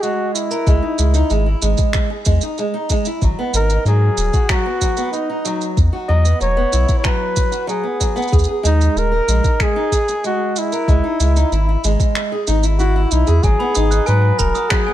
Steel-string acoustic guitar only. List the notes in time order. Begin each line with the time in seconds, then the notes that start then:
0.03 G#3
0.51 A#4
0.67 G#3
0.82 D#4
0.98 G#3
1.14 D#4
1.30 G#3
1.46 E4
1.62 G#3
2.10 G#4
2.26 G#3
2.43 D#4
2.59 G#3
2.74 D#4
2.91 G#3
3.07 E4
3.23 F#3
3.39 B3
3.54 D#4
3.70 D#4
3.86 F#3
4.34 F#4
4.49 F#3
4.66 B3
4.82 F#3
4.97 B3
5.13 D#4
5.29 D#4
5.45 F#3
5.93 F#4
6.09 F#3
6.25 B3
6.40 F#3
6.57 B3
6.73 E4
6.88 E4
7.04 F#3
7.52 F#4
7.67 F#3
7.83 B3
8.00 F#3
8.16 B3
8.32 G#4
8.48 G#4
8.63 G#3
9.12 A#4
9.28 G#3
9.43 D#4
9.60 G#3
9.76 D#4
9.92 G#4
10.09 G#4
10.24 G#3
10.72 A#4
10.88 G#3
11.04 D#4
11.20 G#3
11.36 D#4
11.52 E4
11.69 E4
11.84 G#3
12.32 G#4
12.47 D#4
12.64 E4
12.79 E4
12.96 E4
13.12 D#4
13.27 G#4
13.44 F#3
13.60 B3
13.76 D#4
13.92 D#4
14.08 F#3
14.55 F#4
14.71 F#3
14.88 B3